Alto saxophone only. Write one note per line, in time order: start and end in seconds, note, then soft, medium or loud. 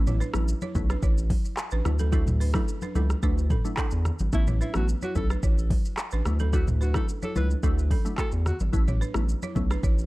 4.34 4.46 E4 loud
4.61 4.73 E4 medium
4.76 4.87 F#4 medium
5.04 5.14 F#4 medium
5.17 5.29 A4 medium
6.54 6.66 F#4 medium
6.82 6.94 F#4 medium
6.97 7.07 A4 medium
7.24 7.35 A4 medium
7.37 7.49 B4 medium
8.20 8.31 A4 medium
8.47 8.59 F#4 medium